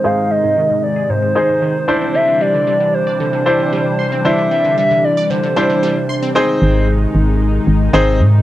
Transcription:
Already playing: analog synth pad C3 D#3 G#3 D#4
0.04 synth pluck G#2, grand piano D#4 G#4 C5, soft synth lead F5
0.17 synth pluck G#2
0.31 synth pluck D#3, soft synth lead D#5
0.44 synth pluck G#2
0.57 synth pluck D#3
0.70 synth pluck G#2
0.83 soft synth lead D5
0.96 synth pluck G#4
1.09 synth pluck G#2, soft synth lead C5
1.23 synth pluck G#2
1.35 synth pluck D#3, grand piano D#4 G#4 C5
1.49 synth pluck G#2
1.62 synth pluck D#3
1.88 analog synth pad C3 E3 G3 D4, grand piano D4 E4 C5, synth pluck C6
2.01 synth pluck C4
2.15 synth pluck D3, soft synth lead E5
2.28 synth pluck D3
2.41 synth pluck G3, soft synth lead D5
2.54 synth pluck D3
2.67 synth pluck G3
2.80 synth pluck D3
2.94 soft synth lead C5
3.07 synth pluck D5
3.20 synth pluck D3, soft synth lead C5
3.33 synth pluck D3
3.46 synth pluck G3, grand piano D4 E4 C5
3.59 synth pluck D3
3.73 synth pluck G3
3.99 synth pluck C6
4.12 synth pluck C4
4.25 synth pluck D3, grand piano D4 E4 C5, soft synth lead E5
4.38 synth pluck D3
4.51 synth pluck G3, soft synth lead E5
4.65 synth pluck D3
4.78 synth pluck G3, soft synth lead E5
4.91 synth pluck D3
5.04 soft synth lead D5
5.17 synth pluck D5
5.30 synth pluck D3, soft synth lead C5
5.43 synth pluck D3
5.56 synth pluck G3, grand piano D4 E4 C5
5.70 synth pluck D3
5.83 synth pluck G3
6.09 synth pluck C6
6.23 synth pluck C4
6.35 analog synth pad C3 D#3 G#3 D#4, grand piano C4 D#4 G#4 C5
6.62 fm bass G#1
7.15 fm bass G#1
7.67 fm bass G#1
7.93 fm bass G#1, grand piano C4 D#4 G#4 C5
8.20 fm bass G#2

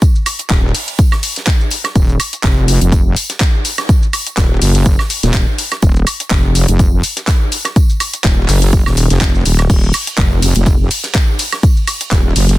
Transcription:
0.02 kick, closed hi-hat, tambourine, shaker
0.15 shaker
0.26 open hi-hat, tambourine, high woodblock, shaker
0.39 closed hi-hat, shaker
0.50 wobble bass D#1, kick, snare, clap, closed hi-hat, tambourine, shaker
0.75 open hi-hat, shaker
0.88 closed hi-hat, shaker
0.99 kick, closed hi-hat, tambourine, shaker
1.12 snare, high woodblock
1.23 open hi-hat, tambourine, shaker
1.36 snare, closed hi-hat, shaker
1.47 kick, snare, clap, closed hi-hat, tambourine, shaker
1.61 shaker
1.71 open hi-hat, tambourine, shaker
1.84 snare, closed hi-hat, high woodblock, shaker
1.96 wobble bass D#1, kick, closed hi-hat, tambourine, shaker
2.09 shaker
2.20 open hi-hat, tambourine, high woodblock, shaker
2.33 closed hi-hat, shaker
2.43 wobble bass F1, kick, snare, clap, closed hi-hat, tambourine, shaker
2.68 open hi-hat, tambourine, shaker
2.81 wobble bass F1, closed hi-hat, shaker
2.92 kick, closed hi-hat, tambourine, shaker
3.16 open hi-hat, tambourine, shaker
3.30 snare, closed hi-hat, shaker
3.40 kick, snare, clap, closed hi-hat, tambourine, shaker
3.65 open hi-hat, tambourine, shaker
3.78 snare, closed hi-hat, high woodblock, shaker
3.89 kick, closed hi-hat, tambourine, shaker
4.03 shaker
4.13 open hi-hat, tambourine, high woodblock, shaker
4.27 closed hi-hat, shaker
4.37 wobble bass D#1, kick, snare, clap, closed hi-hat, tambourine, shaker
4.62 wobble bass F#1, open hi-hat, shaker
4.75 closed hi-hat, shaker
4.86 kick, closed hi-hat, tambourine, shaker
4.99 snare, high woodblock
5.10 open hi-hat, tambourine, shaker
5.23 wobble bass D#1, snare, closed hi-hat, shaker
5.33 kick, snare, clap, closed hi-hat, tambourine, shaker
5.58 open hi-hat, tambourine, shaker
5.72 snare, closed hi-hat, high woodblock, shaker
5.82 wobble bass D#1, kick, closed hi-hat, tambourine, shaker
5.96 shaker
6.07 open hi-hat, tambourine, high woodblock, shaker
6.20 closed hi-hat, shaker
6.30 wobble bass F1, kick, snare, clap, closed hi-hat, tambourine, shaker
6.55 open hi-hat, tambourine, shaker
6.68 wobble bass F1, closed hi-hat, shaker
6.79 kick, closed hi-hat, tambourine, shaker
7.03 open hi-hat, tambourine, shaker
7.17 snare, closed hi-hat, shaker
7.27 kick, snare, clap, closed hi-hat, tambourine, shaker
7.52 open hi-hat, tambourine, shaker
7.65 snare, closed hi-hat, high woodblock, shaker
7.76 kick, closed hi-hat, tambourine, shaker
7.90 shaker
8.00 open hi-hat, tambourine, high woodblock, shaker
8.13 closed hi-hat, shaker
8.24 wobble bass D#1, kick, snare, clap, closed hi-hat, tambourine, shaker
8.48 wobble bass F#1, clap, open hi-hat, shaker
8.62 closed hi-hat, shaker
8.73 kick, closed hi-hat, tambourine, shaker
8.86 wobble bass D#1, snare, high woodblock
8.97 open hi-hat, tambourine, shaker
9.10 wobble bass F1, snare, closed hi-hat, shaker
9.21 kick, snare, clap, closed hi-hat, tambourine, shaker
9.35 shaker
9.45 wobble bass D#1, open hi-hat, tambourine, shaker
9.59 snare, closed hi-hat, high woodblock, shaker
9.70 wobble bass D#1, kick, closed hi-hat, crash, tambourine, shaker
9.83 shaker
9.93 open hi-hat, ride, tambourine, high woodblock, shaker
10.07 closed hi-hat, shaker
10.17 wobble bass F1, kick, snare, clap, closed hi-hat, tambourine, shaker
10.42 open hi-hat, ride, tambourine, shaker
10.55 wobble bass F1, closed hi-hat, shaker
10.66 kick, closed hi-hat, tambourine, shaker
10.91 open hi-hat, ride, tambourine, shaker
11.04 snare, closed hi-hat, shaker
11.14 kick, snare, clap, closed hi-hat, tambourine, shaker
11.39 open hi-hat, ride, tambourine, shaker
11.52 snare, closed hi-hat, high woodblock, shaker
11.63 kick, closed hi-hat, tambourine, shaker
11.77 shaker
11.87 open hi-hat, ride, tambourine, high woodblock, shaker
12.01 closed hi-hat, shaker
12.11 wobble bass D#1, kick, snare, clap, closed hi-hat, tambourine, shaker
12.36 wobble bass F#1, open hi-hat, ride, shaker
12.49 closed hi-hat, shaker

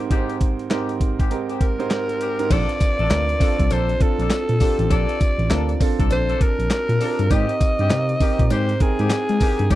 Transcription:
Already playing: grand piano G#2 C4 D#4 G4 A#4
0.10 grand piano G#2 C4 D#4 G4 C5, horn section G#3 C4 G4, kick, closed hi-hat
0.29 closed hi-hat
0.41 kick, closed hi-hat
0.59 closed hi-hat
0.70 grand piano G#2 C4 D#4 G4 A#4, horn section G#3 C4 G4, snare, clap, closed hi-hat
0.89 closed hi-hat
1.00 kick, closed hi-hat
1.19 horn section G#3 C4 G4, kick, closed hi-hat
1.30 grand piano G#2 C4 D#4 G4 A#4, closed hi-hat
1.49 horn section G#3 C4 G4, closed hi-hat
1.61 alto saxophone A#4, kick, closed hi-hat
1.79 grand piano G#2 C4 D#4 G4 C5, closed hi-hat
1.90 snare, clap, closed hi-hat
2.09 closed hi-hat
2.20 horn section G#3 C4 G4, closed hi-hat
2.39 grand piano G#2 C4 D#4 G4 A#4, closed hi-hat
2.50 tine electric piano A#1, horn section A#3 D4 A4, grand piano C4 D4 F4 A4, alto saxophone D5, kick, closed hi-hat, crash, tambourine, cowbell
2.69 closed hi-hat
2.80 kick, closed hi-hat, tambourine
2.99 tine electric piano A1, horn section A#3 D4 A4, closed hi-hat
3.10 tine electric piano D2, grand piano C4 D4 F4 A#4, snare, clap, closed hi-hat, tambourine, cowbell
3.29 closed hi-hat
3.40 horn section A#3 D4 A4, grand piano C4 D4 F4 A4, kick, open hi-hat, tambourine
3.59 tine electric piano C2, kick, closed hi-hat
3.70 tine electric piano A#1, horn section A#3 D4 A4, alto saxophone C5, closed hi-hat, tambourine, cowbell
3.89 closed hi-hat
4.00 grand piano C4 D4 F4 A4, alto saxophone A4, kick, closed hi-hat
4.19 tine electric piano A#1, horn section A#3 D4 A4, closed hi-hat
4.30 snare, clap, closed hi-hat, tambourine, cowbell
4.49 tine electric piano A#2, closed hi-hat
4.60 horn section A#3 D4 A4, grand piano C4 D4 F4 G4, kick, open hi-hat, tambourine
4.79 tine electric piano A1, closed hi-hat
4.90 tine electric piano A#1, horn section A#3 D4 A4, alto saxophone D5, kick, closed hi-hat, tambourine, cowbell
5.09 closed hi-hat
5.21 kick, closed hi-hat, tambourine
5.39 tine electric piano A1, closed hi-hat
5.50 tine electric piano D2, horn section A#3 D4 A4, grand piano C4 D4 F4 A#4, snare, clap, closed hi-hat, tambourine, cowbell
5.69 closed hi-hat
5.80 grand piano C4 D4 F4 A4, kick, open hi-hat, tambourine
5.99 tine electric piano C2, horn section A#3 D4 A4, kick, closed hi-hat
6.10 tine electric piano A#1, grand piano C4 D4 F4 A5, alto saxophone C5, closed hi-hat, tambourine, cowbell
6.29 horn section A#3 D4 A4, closed hi-hat
6.41 alto saxophone A#4, kick, closed hi-hat
6.59 tine electric piano A#1, closed hi-hat
6.70 snare, clap, closed hi-hat, tambourine, cowbell
6.89 tine electric piano A#2, closed hi-hat
7.00 horn section A#3 D4 A4, grand piano C4 D4 F4 A#4, open hi-hat, tambourine
7.19 tine electric piano G2, closed hi-hat
7.30 tine electric piano G#2, horn section G#3 C4 G4, grand piano C4 D#4 G4 A#4, alto saxophone D#5, kick, closed hi-hat, tambourine, cowbell
7.49 closed hi-hat
7.61 kick, closed hi-hat, tambourine
7.79 tine electric piano G2, horn section G#3 C4 G4, closed hi-hat
7.90 tine electric piano C3, grand piano C4 D#4 G4 A#4, snare, clap, closed hi-hat, tambourine, cowbell
8.09 closed hi-hat
8.20 horn section G#3 C4 G4, grand piano C4 D#4 G4 A#4, kick, open hi-hat, tambourine
8.39 tine electric piano A#2, kick, closed hi-hat
8.50 tine electric piano G#2, horn section G#3 C4 G4, alto saxophone C5, closed hi-hat, tambourine, cowbell
8.69 closed hi-hat
8.80 grand piano C4 D#4 A#4 G5, alto saxophone G#4, kick, closed hi-hat
8.99 tine electric piano G#2, horn section G#3 C4 G4, closed hi-hat
9.10 snare, clap, closed hi-hat, tambourine, cowbell
9.29 tine electric piano G#3, closed hi-hat
9.40 horn section G#3 C4 G4, grand piano C4 D#4 A#4 G5, kick, open hi-hat, tambourine
9.59 tine electric piano G2, closed hi-hat
9.70 tine electric piano G#2, horn section G#3 C4 G4, alto saxophone D5, kick, closed hi-hat, tambourine, cowbell

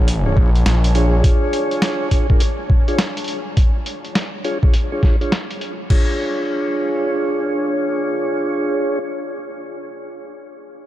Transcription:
Already playing: analog synth bass A#1, ambient pad D4 C#5 G#5
0.08 closed hi-hat
0.26 tonewheel organ D4 F4 G#4 C#5
0.37 analog synth bass A#1, kick
0.56 closed hi-hat
0.66 analog synth bass A#1, snare, closed hi-hat
0.84 closed hi-hat
0.95 tonewheel organ D4 F4 G#4 C#5, closed hi-hat
1.24 kick, closed hi-hat
1.53 closed hi-hat
1.71 closed hi-hat
1.82 snare, closed hi-hat
2.11 tonewheel organ D4 F4 G#4 C#5, kick, closed hi-hat
2.30 tonewheel organ D4 F4 G#4 A#4, kick
2.40 closed hi-hat
2.70 kick
2.88 tonewheel organ D4 F4 G#4 C#5, closed hi-hat
2.99 snare, closed hi-hat
3.17 closed hi-hat
3.24 closed hi-hat
3.28 closed hi-hat
3.57 kick, closed hi-hat
3.86 closed hi-hat
4.05 closed hi-hat
4.15 snare, closed hi-hat
4.44 tonewheel organ D4 F4 G#4 C#5, closed hi-hat
4.63 tonewheel organ D4 F4 G#4 C#5, kick
4.74 closed hi-hat
4.92 tonewheel organ D4 F4 G#4 C#5
5.03 kick, snare
5.21 tonewheel organ D4 F4 G#4 C#5, closed hi-hat
5.32 snare, closed hi-hat
5.51 closed hi-hat
5.61 closed hi-hat
5.90 tonewheel organ D4 F4 G#4 C#5, ambient pad D4, kick, crash
6.01 ambient pad A#4
6.11 ambient pad C#5
6.17 ambient pad G#5

